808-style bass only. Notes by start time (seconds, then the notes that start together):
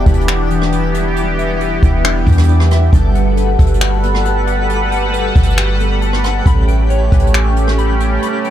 0.06 E1
1.83 E1
2.27 E2
2.93 G1
3.59 G1
5.36 G1
6.46 A1
7.12 A1